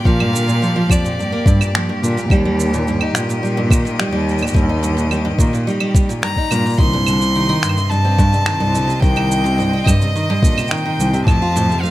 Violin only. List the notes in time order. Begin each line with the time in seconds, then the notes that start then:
0.06 F5
0.91 D5
6.23 A#5
6.80 C6
7.89 A5
9.00 G5
9.84 D#5
10.68 G5
11.24 A5
11.81 F5